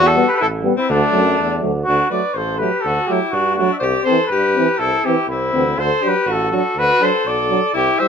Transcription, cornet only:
0.07 0.29 A4 medium
0.28 0.38 A4 medium
0.28 0.32 B4 medium
0.36 0.41 B4 medium
0.42 0.47 A4 medium
0.79 0.91 E4 medium
0.90 1.62 D4 loud
1.84 2.08 F#4 loud
2.11 2.36 D5 medium
2.34 2.57 C5 medium
2.57 2.83 B4 medium
2.81 3.08 A4 loud
3.07 3.32 G4 medium
3.30 3.55 F#4 medium
3.55 3.72 F#4 medium
3.73 3.79 E5 medium
3.77 4.03 D5 loud
4.04 4.26 C5 medium
4.27 4.79 B4 medium
4.78 5.06 A4 medium
5.05 5.28 G4 medium
5.29 5.81 E4 medium
5.79 6.09 C5 loud
6.08 6.33 B4 medium
6.32 6.54 A4 medium
6.56 6.80 A4 medium
6.79 7.05 B4 loud
7.04 7.29 C5 medium
7.27 7.75 D5 medium
7.76 8.01 G4 loud
7.99 8.08 E5 loud

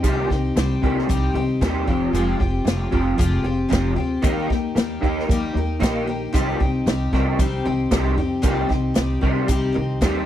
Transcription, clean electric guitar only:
0.03 0.28 C3 medium
0.03 0.29 D#3 medium
0.03 0.29 G3 medium
0.29 0.54 C3 medium
0.29 0.54 D#3 medium
0.56 0.80 C3 medium
0.56 0.80 D#3 medium
0.82 1.07 C3 medium
0.82 1.07 D#3 medium
0.82 1.08 G3 medium
1.09 1.33 C3 medium
1.09 1.33 D#3 medium
1.35 1.59 C3 medium
1.35 1.59 D#3 medium
1.61 1.86 C3 medium
1.61 1.86 D#3 medium
1.61 1.87 G3 loud
1.87 2.12 F2 medium
1.87 2.12 C3 medium
1.87 2.13 F3 loud
2.13 2.38 F2 medium
2.13 2.38 C3 medium
2.13 2.39 F3 medium
2.39 2.63 F2 medium
2.39 2.63 C3 medium
2.65 2.89 F2 medium
2.65 2.89 C3 medium
2.91 3.16 F2 medium
2.91 3.17 C3 medium
2.91 3.17 F3 loud
3.18 3.42 F2 medium
3.18 3.42 C3 medium
3.44 3.68 F2 medium
3.44 3.68 C3 medium
3.69 3.94 F2 medium
3.69 3.95 C3 medium
3.69 3.96 F3 medium
3.96 4.20 F2 medium
3.96 4.21 C3 medium
4.22 4.48 D#3 medium
4.22 4.48 A#3 medium
4.22 4.48 D#4 medium
4.49 4.73 D#3 medium
4.49 4.73 A#3 medium
4.75 4.99 D#3 medium
4.75 4.99 A#3 medium
5.01 5.26 D#3 medium
5.01 5.26 A#3 medium
5.01 5.27 D#4 medium
5.27 5.52 D#3 medium
5.27 5.52 A#3 medium
5.54 5.78 D#3 medium
5.54 5.78 A#3 medium
5.80 6.05 D#3 medium
5.80 6.05 A#3 medium
5.80 6.05 D#4 medium
6.06 6.30 D#3 medium
6.06 6.30 A#3 medium
6.33 6.58 C3 medium
6.33 6.58 D#3 medium
6.33 6.58 G3 medium
6.60 6.84 C3 medium
6.60 6.84 D#3 medium
6.87 7.10 C3 medium
6.87 7.10 D#3 medium
7.13 7.37 C3 medium
7.13 7.38 D#3 medium
7.13 7.38 G3 medium
7.39 7.63 C3 medium
7.39 7.63 D#3 medium
7.65 7.89 C3 medium
7.65 7.89 D#3 medium
7.91 8.16 C3 medium
7.91 8.16 D#3 medium
7.91 8.16 G3 medium
8.17 8.41 C3 medium
8.17 8.41 D#3 medium
8.43 8.67 C3 medium
8.43 8.68 D#3 medium
8.43 8.68 G3 medium
8.69 8.93 C3 medium
8.69 8.93 D#3 medium
8.95 9.19 C3 medium
8.95 9.20 D#3 medium
9.22 9.47 C3 medium
9.22 9.47 D#3 medium
9.22 9.47 G3 medium
9.48 9.72 C3 medium
9.48 9.72 D#3 medium
9.75 9.99 C3 medium
9.75 9.99 D#3 medium
10.02 10.26 C3 medium
10.02 10.26 D#3 medium
10.02 10.26 G3 medium

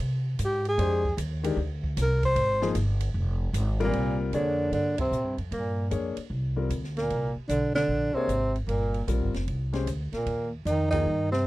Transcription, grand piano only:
0.78 1.01 G#3 medium
0.78 1.02 D4 medium
0.78 1.02 G4 medium
0.78 1.02 C5 medium
1.43 1.56 D#3 medium
1.43 1.56 G#3 medium
1.43 1.56 D4 medium
1.43 1.56 G4 medium
2.62 2.74 F3 medium
2.62 2.74 A#3 medium
2.62 2.74 D#4 medium
2.62 2.74 G#4 medium
3.80 4.30 G3 medium
3.80 4.30 C4 medium
3.80 4.30 F4 medium
3.80 4.30 A#4 loud
4.33 4.93 A#3 medium
4.33 4.94 D4 medium
4.33 4.94 G#4 medium
4.33 4.94 C#5 medium
5.90 6.14 A#3 medium
5.90 6.14 D4 medium
5.90 6.15 G#4 medium
5.90 6.15 C#5 medium
6.56 6.69 G3 medium
6.56 6.69 C4 medium
6.56 6.69 F4 soft
6.56 6.69 A#4 medium
8.15 8.28 A#3 medium
8.15 8.28 D4 medium
8.15 8.28 G#4 medium
8.15 8.28 C#5 medium
9.07 9.32 G3 medium
9.07 9.31 C4 medium
9.07 9.32 F4 medium
9.07 9.32 A#4 medium
9.73 9.86 G#3 medium
9.73 9.86 C#4 medium
9.73 9.86 G4 medium
9.73 9.86 C5 medium
10.92 11.05 F3 medium
10.92 11.05 A#3 medium
10.92 11.05 D#4 medium
10.92 11.05 G#4 medium

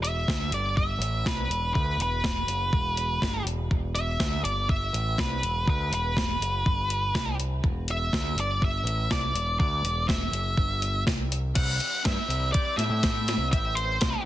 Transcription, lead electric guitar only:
0.03 0.54 E5 medium
0.54 0.77 D5 medium
0.77 1.27 E5 medium
1.27 1.73 B4 medium
1.74 2.00 B4 medium
2.02 3.44 B4 medium
3.95 4.41 E5 medium
4.44 4.67 D5 medium
4.70 5.20 E5 medium
5.20 5.65 B4 medium
5.70 5.91 B4 medium
5.94 7.36 B4 medium
7.91 8.40 E5 loud
8.40 8.64 D5 medium
8.64 9.12 E5 loud
9.12 9.59 D5 medium
9.60 10.08 D5 medium
10.08 11.03 E5 medium
11.56 12.01 F#5 medium
12.06 12.52 E5 medium
12.52 12.77 D5 medium
12.77 13.47 E5 medium
13.52 13.75 E5 medium
13.75 14.21 C5 medium

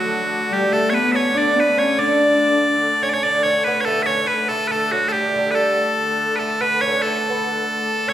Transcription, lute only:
0.00 0.26 F#3 medium
0.52 0.73 G3 medium
0.73 1.14 A3 medium
1.14 1.36 C#4 medium
1.35 1.78 D4 medium
1.77 1.99 C#4 medium
1.98 2.99 D4 medium
3.03 3.13 C#4 medium
3.14 3.25 C#4 medium
3.25 3.47 D4 medium
3.46 3.67 C#4 medium
3.67 3.87 B3 medium
3.87 4.07 A3 medium
4.08 4.23 C#4 medium
4.24 4.29 C#4 medium
4.29 4.50 B3 medium
4.51 4.70 A3 medium
4.71 4.93 A3 medium
4.93 5.12 F#3 medium
5.14 5.28 G3 medium
5.29 5.35 A3 soft
5.36 5.74 G3 medium
6.40 6.61 A3 medium
6.61 6.82 B3 medium
6.82 6.86 C#4 medium
6.88 6.91 C#4 medium
6.92 7.03 C#4 medium
7.04 7.29 A3 medium
7.30 7.49 B3 medium
8.07 8.12 C#4 medium

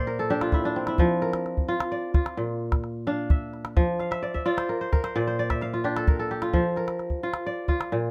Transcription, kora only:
0.00 1.05 A#2 medium
0.00 1.14 C5 medium
0.00 0.94 D5 medium
0.00 0.48 E5 medium
0.00 0.60 F5 medium
0.00 0.43 G5 medium
0.07 1.21 A#4 medium
0.19 1.28 A4 medium
0.30 0.65 D4 medium
0.30 1.72 G4 medium
0.42 0.94 F4 medium
0.54 0.88 E4 medium
0.65 2.33 D4 medium
0.76 2.56 C4 medium
0.88 1.74 E4 medium
0.99 2.44 F3 medium
1.22 2.49 A#4 medium
1.68 2.14 F4 medium
1.92 3.02 D5 medium
2.14 3.37 F4 medium
2.37 3.82 A#2 medium
3.07 4.75 D4 medium
3.07 4.00 F5 medium
3.31 4.06 E5 medium
3.77 5.21 F3 medium
4.00 4.40 F5 medium
4.11 4.34 E5 medium
4.23 4.46 D5 medium
4.34 5.38 E5 medium
4.46 5.56 F4 medium
4.46 5.15 D5 medium
4.57 4.81 C5 medium
4.69 4.92 A#4 medium
4.81 5.03 C5 medium
4.92 6.03 A#4 medium
5.04 5.27 C5 medium
5.16 6.59 A#2 medium
5.16 5.39 D5 medium
5.27 6.46 C5 medium
5.39 6.50 D5 medium
5.50 5.80 E5 medium
5.62 6.62 F5 medium
5.74 6.42 F4 medium
5.84 7.52 D4 medium
5.84 6.30 G4 medium
5.97 6.19 A4 medium
6.08 6.77 A#4 medium
6.19 6.83 A4 medium
6.31 7.72 G4 medium
6.42 7.23 F4 medium
6.54 7.98 F3 medium
6.77 8.04 A#4 medium
7.23 7.68 F4 medium
7.46 8.11 D5 medium
7.69 8.11 F4 medium
7.92 8.11 A#2 medium

